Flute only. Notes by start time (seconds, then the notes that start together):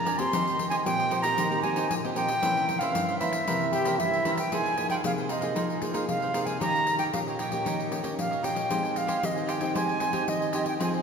Already playing: A#5
0.18 C6
0.70 G#5
0.85 G5
1.22 A#5
1.62 G#5
1.88 G#5
2.15 G5
2.79 F5
3.19 E5
4.00 E5
4.38 G5
4.53 G#5
4.90 G5
5.06 F5
5.31 D#5
6.08 F5
6.46 G#5
6.61 A#5
6.99 G5
7.13 F5
7.39 G5
8.19 F5
8.45 G5
8.97 F5
9.25 D#5
9.50 G5
9.77 G#5
10.29 D#5
10.68 G5
10.83 G#5